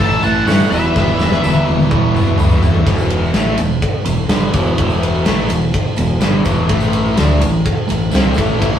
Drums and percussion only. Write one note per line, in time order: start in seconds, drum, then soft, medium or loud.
0.00 kick loud
0.00 open hi-hat medium
0.11 tambourine soft
0.23 tambourine medium
0.35 tambourine soft
0.47 snare loud
0.47 open hi-hat medium
0.47 tambourine loud
0.60 tambourine medium
0.72 tambourine medium
0.96 kick loud
0.96 snare medium
0.96 tambourine soft
1.07 tambourine soft
1.19 snare medium
1.19 tambourine medium
1.31 snare medium
1.43 high tom medium
1.43 tambourine loud
1.56 tambourine soft
1.67 high tom loud
1.67 tambourine soft
1.79 mid tom medium
1.79 tambourine soft
1.91 kick loud
1.91 mid tom medium
1.91 tambourine soft
2.15 mid tom loud
2.15 tambourine medium
2.27 mid tom medium
2.38 mid tom loud
2.38 tambourine medium
2.51 tambourine medium
2.63 floor tom loud
2.63 tambourine medium
2.74 floor tom medium
2.74 tambourine soft
2.87 kick loud
2.87 ride loud
2.98 tambourine medium
3.10 ride medium
3.24 tambourine soft
3.34 snare loud
3.34 ride medium
3.34 tambourine medium
3.48 tambourine soft
3.58 ride medium
3.58 tambourine medium
3.70 tambourine soft
3.82 kick loud
3.82 ride loud
4.06 ride medium
4.06 tambourine medium
4.19 tambourine soft
4.29 snare loud
4.29 ride loud
4.29 tambourine medium
4.41 tambourine soft
4.53 kick loud
4.53 ride medium
4.53 tambourine medium
4.66 tambourine soft
4.78 kick loud
4.78 ride loud
4.89 tambourine medium
5.03 ride medium
5.14 tambourine soft
5.25 snare loud
5.25 ride loud
5.25 tambourine medium
5.49 ride medium
5.49 tambourine medium
5.61 tambourine soft
5.74 kick loud
5.74 ride loud
5.96 ride medium
5.96 tambourine medium
6.09 tambourine soft
6.21 snare loud
6.21 ride medium
6.21 tambourine loud
6.45 kick loud
6.45 ride medium
6.45 tambourine medium
6.55 tambourine soft
6.69 kick loud
6.69 ride loud
6.80 tambourine medium
6.93 ride medium
7.06 tambourine soft
7.17 snare loud
7.17 ride loud
7.17 tambourine medium
7.29 tambourine soft
7.41 ride medium
7.41 tambourine medium
7.53 tambourine soft
7.66 kick loud
7.66 ride loud
7.89 ride medium
7.89 tambourine medium
8.00 tambourine soft
8.11 snare loud
8.11 ride loud
8.11 tambourine medium
8.24 tambourine soft
8.34 kick loud
8.34 tambourine medium
8.38 ride medium
8.47 tambourine soft
8.60 kick loud
8.60 ride loud
8.60 tambourine soft